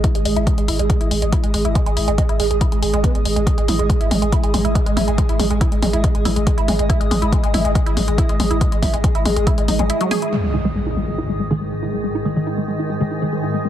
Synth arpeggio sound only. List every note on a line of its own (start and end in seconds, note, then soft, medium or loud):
0.04 0.12 E4 medium
0.15 0.22 G#3 medium
0.25 0.33 G#3 medium
0.36 0.44 E4 medium
0.47 0.55 G#3 medium
0.58 0.65 G#3 medium
0.68 0.76 E4 medium
0.79 0.87 G#3 medium
0.90 0.98 G#3 medium
1.01 1.08 E4 medium
1.11 1.19 G#3 medium
1.22 1.30 G#3 medium
1.32 1.40 E4 medium
1.44 1.51 G#3 medium
1.54 1.62 G#3 medium
1.65 1.72 E4 medium
1.75 1.83 G#3 medium
1.86 1.94 G#3 medium
1.97 2.05 E4 medium
2.08 2.15 G#3 medium
2.18 2.26 G#3 medium
2.29 2.37 E4 medium
2.40 2.48 G#3 medium
2.51 2.58 G#3 medium
2.61 2.69 E4 medium
2.72 2.80 G#3 medium
2.82 2.90 G#3 medium
2.93 2.96 G#3 loud
3.04 3.09 B3 medium
3.15 3.18 G#3 medium
3.25 3.31 G#3 medium
3.36 3.41 G#3 medium
3.47 3.55 G#3 medium
3.58 3.65 G#3 medium
3.68 3.76 E4 medium
3.79 3.87 G#3 medium
3.90 3.98 G#3 medium
4.01 4.08 E4 medium
4.11 4.19 G#3 medium
4.22 4.29 G#3 medium
4.32 4.40 E4 medium
4.43 4.51 G#3 medium
4.54 4.62 G#3 medium
4.65 4.72 E4 medium
4.75 4.83 G#3 medium
4.86 4.94 G#3 medium
4.97 5.05 E4 medium
5.08 5.15 G#3 medium
5.18 5.26 G#3 medium
5.29 5.37 E4 medium
5.40 5.47 G#3 medium
5.51 5.58 G#3 medium
5.61 5.69 E4 medium
5.72 5.80 G#3 medium
5.82 5.90 G#3 medium
5.93 6.01 E4 medium
6.04 6.12 G#3 medium
6.15 6.22 G#3 medium
6.25 6.33 E4 medium
6.36 6.44 G#3 medium
6.47 6.55 G#3 medium
6.58 6.65 E4 medium
6.68 6.76 G#3 medium
6.79 6.87 G#3 medium
6.90 6.98 E4 medium
7.00 7.08 G#3 medium
7.11 7.19 G#3 medium
7.22 7.29 E4 medium
7.32 7.40 G#3 medium
7.43 7.51 G#3 medium
7.54 7.62 E4 medium
7.65 7.72 G#3 medium
7.75 7.83 G#3 medium
7.86 7.94 E4 medium
7.97 8.05 G#3 medium
8.08 8.15 G#3 medium
8.18 8.26 E4 medium
8.29 8.37 G#3 medium
8.40 8.48 G#3 medium
8.51 8.58 E4 medium
8.61 8.69 G#3 medium
8.72 8.80 G#3 medium
8.82 8.90 E4 medium
8.93 9.01 G#3 medium
9.04 9.12 G#3 medium
9.15 9.22 E4 medium
9.26 9.33 G#3 medium
9.36 9.44 G#3 medium
9.47 9.55 E4 medium
9.58 9.65 G#3 medium
9.68 9.74 D#4 medium
9.79 9.84 G#3 medium
9.90 9.98 E4 medium
10.01 10.04 F#3 loud
10.11 10.16 G#4 loud
10.22 10.27 E4 medium
10.33 10.40 G#3 medium
10.44 10.51 G#3 medium
10.54 10.62 E4 medium
10.65 10.72 G#3 medium
10.75 10.83 G#3 medium
10.86 10.94 E4 medium
10.97 11.05 G#3 medium
11.08 11.15 G#3 medium
11.18 11.26 E4 medium
11.29 11.37 G#3 medium
11.40 11.48 G#3 medium
11.51 11.58 E4 medium
11.61 11.69 G#3 medium
11.72 11.80 G#3 medium
11.82 11.90 E4 medium
11.93 12.01 G#3 medium
12.04 12.12 G#3 medium
12.15 12.22 E4 medium
12.25 12.33 G#3 medium
12.36 12.44 G#3 medium
12.47 12.55 E4 medium
12.58 12.65 G#3 medium
12.68 12.76 G#3 medium
12.79 12.87 E4 medium
12.90 12.98 G#3 medium
13.01 13.08 G#3 medium
13.11 13.19 E4 medium
13.22 13.30 G#3 medium
13.32 13.40 G#3 medium
13.43 13.51 E4 medium
13.54 13.62 G#3 medium
13.65 13.69 G#3 medium